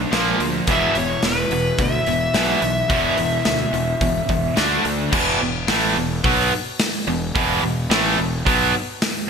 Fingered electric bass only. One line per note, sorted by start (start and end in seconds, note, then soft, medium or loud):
0.13 0.32 A#1 medium
0.40 0.59 D2 medium
0.68 0.87 E1 medium
0.95 1.15 E1 medium
1.23 1.43 E1 medium
1.51 1.71 E1 medium
1.79 1.99 D2 medium
2.07 2.27 E1 medium
2.34 2.54 B1 medium
2.62 2.82 B1 medium
2.90 3.10 E1 medium
3.18 3.38 E1 medium
3.46 3.65 D2 medium
3.73 3.93 E1 medium
4.01 4.21 E1 medium
4.29 4.49 E1 medium
4.58 4.77 D2 medium
4.85 5.05 D2 medium
5.12 5.39 E1 loud
5.41 5.67 E1 medium
5.69 5.94 A1 medium
5.97 6.22 E1 medium
6.24 6.50 B1 loud
7.07 7.33 E1 medium
7.35 7.61 E1 loud
7.63 7.89 E1 medium
7.90 8.16 A1 loud
8.19 8.44 E1 medium
8.46 8.72 B1 loud